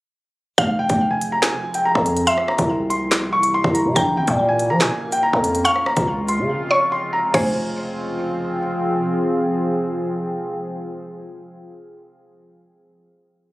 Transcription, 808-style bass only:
0, 0, Header, 1, 2, 480
1, 0, Start_track
1, 0, Key_signature, -4, "minor"
1, 0, Tempo, 422535
1, 659, Time_signature, 4, 2, 24, 8
1, 15363, End_track
2, 0, Start_track
2, 0, Title_t, "808-style bass"
2, 0, Program_c, 0, 38
2, 659, Note_on_c, 0, 29, 116
2, 1005, Note_off_c, 0, 29, 0
2, 1019, Note_on_c, 0, 29, 103
2, 1710, Note_off_c, 0, 29, 0
2, 2218, Note_on_c, 0, 41, 104
2, 2564, Note_off_c, 0, 41, 0
2, 2939, Note_on_c, 0, 36, 108
2, 4093, Note_off_c, 0, 36, 0
2, 4139, Note_on_c, 0, 36, 108
2, 4379, Note_on_c, 0, 48, 102
2, 4396, Note_off_c, 0, 36, 0
2, 4493, Note_off_c, 0, 48, 0
2, 4499, Note_on_c, 0, 34, 111
2, 4739, Note_on_c, 0, 32, 101
2, 4756, Note_off_c, 0, 34, 0
2, 4853, Note_off_c, 0, 32, 0
2, 4859, Note_on_c, 0, 46, 113
2, 5339, Note_on_c, 0, 53, 100
2, 5356, Note_off_c, 0, 46, 0
2, 5459, Note_on_c, 0, 46, 94
2, 5476, Note_off_c, 0, 53, 0
2, 5573, Note_off_c, 0, 46, 0
2, 6059, Note_on_c, 0, 41, 107
2, 6405, Note_off_c, 0, 41, 0
2, 6779, Note_on_c, 0, 37, 113
2, 7259, Note_on_c, 0, 49, 98
2, 7276, Note_off_c, 0, 37, 0
2, 7379, Note_off_c, 0, 49, 0
2, 8339, Note_on_c, 0, 29, 115
2, 10213, Note_off_c, 0, 29, 0
2, 15363, End_track
0, 0, End_of_file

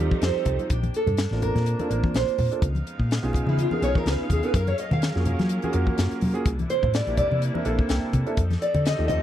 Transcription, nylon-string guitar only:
0, 0, Header, 1, 2, 480
1, 0, Start_track
1, 0, Tempo, 479233
1, 710, Time_signature, 4, 2, 24, 8
1, 9241, End_track
2, 0, Start_track
2, 0, Title_t, "Nylon-string guitar"
2, 0, Program_c, 0, 24
2, 244, Note_on_c, 0, 72, 70
2, 684, Note_off_c, 0, 72, 0
2, 721, Note_on_c, 0, 67, 78
2, 949, Note_off_c, 0, 67, 0
2, 966, Note_on_c, 0, 69, 67
2, 1406, Note_off_c, 0, 69, 0
2, 1430, Note_on_c, 0, 70, 84
2, 2111, Note_off_c, 0, 70, 0
2, 2168, Note_on_c, 0, 72, 75
2, 2607, Note_off_c, 0, 72, 0
2, 3494, Note_on_c, 0, 64, 76
2, 3594, Note_off_c, 0, 64, 0
2, 3617, Note_on_c, 0, 65, 76
2, 3724, Note_off_c, 0, 65, 0
2, 3728, Note_on_c, 0, 68, 66
2, 3831, Note_off_c, 0, 68, 0
2, 3843, Note_on_c, 0, 73, 104
2, 3966, Note_off_c, 0, 73, 0
2, 3984, Note_on_c, 0, 70, 78
2, 4094, Note_off_c, 0, 70, 0
2, 4094, Note_on_c, 0, 71, 86
2, 4212, Note_off_c, 0, 71, 0
2, 4234, Note_on_c, 0, 63, 52
2, 4324, Note_off_c, 0, 63, 0
2, 4335, Note_on_c, 0, 68, 97
2, 4478, Note_off_c, 0, 68, 0
2, 4478, Note_on_c, 0, 71, 69
2, 4563, Note_off_c, 0, 71, 0
2, 4567, Note_on_c, 0, 70, 76
2, 4687, Note_on_c, 0, 73, 81
2, 4688, Note_off_c, 0, 70, 0
2, 4790, Note_off_c, 0, 73, 0
2, 4804, Note_on_c, 0, 75, 80
2, 4926, Note_off_c, 0, 75, 0
2, 4939, Note_on_c, 0, 77, 87
2, 6091, Note_off_c, 0, 77, 0
2, 6712, Note_on_c, 0, 72, 96
2, 6944, Note_off_c, 0, 72, 0
2, 6959, Note_on_c, 0, 74, 85
2, 7177, Note_off_c, 0, 74, 0
2, 7189, Note_on_c, 0, 74, 87
2, 7423, Note_off_c, 0, 74, 0
2, 8634, Note_on_c, 0, 74, 79
2, 8864, Note_off_c, 0, 74, 0
2, 8881, Note_on_c, 0, 75, 85
2, 9084, Note_off_c, 0, 75, 0
2, 9096, Note_on_c, 0, 75, 103
2, 9241, Note_off_c, 0, 75, 0
2, 9241, End_track
0, 0, End_of_file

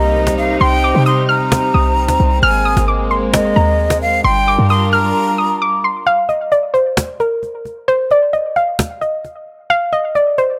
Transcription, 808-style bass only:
0, 0, Header, 1, 2, 480
1, 0, Start_track
1, 0, Key_signature, -3, "minor"
1, 0, Tempo, 454545
1, 642, Time_signature, 4, 2, 24, 8
1, 11184, End_track
2, 0, Start_track
2, 0, Title_t, "808-style bass"
2, 0, Program_c, 0, 38
2, 0, Note_on_c, 0, 36, 103
2, 613, Note_off_c, 0, 36, 0
2, 642, Note_on_c, 0, 36, 107
2, 988, Note_off_c, 0, 36, 0
2, 1002, Note_on_c, 0, 48, 99
2, 1809, Note_off_c, 0, 48, 0
2, 1843, Note_on_c, 0, 36, 102
2, 2202, Note_on_c, 0, 39, 99
2, 2218, Note_off_c, 0, 36, 0
2, 2316, Note_off_c, 0, 39, 0
2, 2322, Note_on_c, 0, 36, 107
2, 2553, Note_off_c, 0, 36, 0
2, 2562, Note_on_c, 0, 32, 109
2, 2908, Note_off_c, 0, 32, 0
2, 2922, Note_on_c, 0, 32, 102
2, 3729, Note_off_c, 0, 32, 0
2, 3762, Note_on_c, 0, 39, 99
2, 4453, Note_off_c, 0, 39, 0
2, 4482, Note_on_c, 0, 31, 110
2, 4828, Note_off_c, 0, 31, 0
2, 4842, Note_on_c, 0, 43, 100
2, 5418, Note_off_c, 0, 43, 0
2, 11184, End_track
0, 0, End_of_file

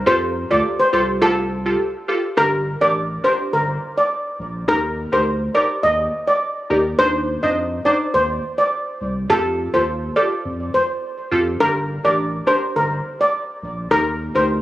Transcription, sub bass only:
0, 0, Header, 1, 2, 480
1, 0, Start_track
1, 0, Key_signature, -2, "minor"
1, 0, Tempo, 576923
1, 55, Time_signature, 4, 2, 24, 8
1, 12163, End_track
2, 0, Start_track
2, 0, Title_t, "Sub bass"
2, 0, Program_c, 0, 38
2, 55, Note_on_c, 0, 41, 109
2, 375, Note_off_c, 0, 41, 0
2, 422, Note_on_c, 0, 38, 97
2, 520, Note_off_c, 0, 38, 0
2, 776, Note_on_c, 0, 36, 92
2, 1462, Note_off_c, 0, 36, 0
2, 1974, Note_on_c, 0, 31, 103
2, 2294, Note_off_c, 0, 31, 0
2, 2342, Note_on_c, 0, 33, 91
2, 2649, Note_off_c, 0, 33, 0
2, 2935, Note_on_c, 0, 31, 100
2, 3144, Note_off_c, 0, 31, 0
2, 3655, Note_on_c, 0, 34, 90
2, 3864, Note_off_c, 0, 34, 0
2, 3894, Note_on_c, 0, 39, 104
2, 4214, Note_off_c, 0, 39, 0
2, 4262, Note_on_c, 0, 38, 91
2, 4569, Note_off_c, 0, 38, 0
2, 4855, Note_on_c, 0, 39, 107
2, 5064, Note_off_c, 0, 39, 0
2, 5576, Note_on_c, 0, 39, 89
2, 5784, Note_off_c, 0, 39, 0
2, 5815, Note_on_c, 0, 39, 108
2, 6135, Note_off_c, 0, 39, 0
2, 6183, Note_on_c, 0, 41, 85
2, 6490, Note_off_c, 0, 41, 0
2, 6776, Note_on_c, 0, 39, 104
2, 6985, Note_off_c, 0, 39, 0
2, 7496, Note_on_c, 0, 36, 97
2, 7704, Note_off_c, 0, 36, 0
2, 7736, Note_on_c, 0, 41, 102
2, 8055, Note_off_c, 0, 41, 0
2, 8102, Note_on_c, 0, 39, 84
2, 8409, Note_off_c, 0, 39, 0
2, 8695, Note_on_c, 0, 41, 101
2, 8904, Note_off_c, 0, 41, 0
2, 9416, Note_on_c, 0, 41, 84
2, 9624, Note_off_c, 0, 41, 0
2, 9654, Note_on_c, 0, 31, 101
2, 9974, Note_off_c, 0, 31, 0
2, 10021, Note_on_c, 0, 33, 90
2, 10329, Note_off_c, 0, 33, 0
2, 10613, Note_on_c, 0, 31, 105
2, 10823, Note_off_c, 0, 31, 0
2, 11336, Note_on_c, 0, 34, 91
2, 11545, Note_off_c, 0, 34, 0
2, 11574, Note_on_c, 0, 39, 111
2, 11894, Note_off_c, 0, 39, 0
2, 11940, Note_on_c, 0, 38, 92
2, 12163, Note_off_c, 0, 38, 0
2, 12163, End_track
0, 0, End_of_file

